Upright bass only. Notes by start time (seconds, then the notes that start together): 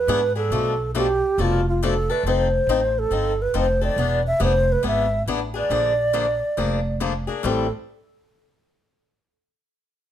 0.07 G#2
0.50 B1
1.37 F1
2.23 F1
2.67 A1
3.10 G1
3.54 F1
3.96 E1
4.40 F1
4.83 G#1
5.26 A1
5.69 A#1
6.57 F1
7.43 A1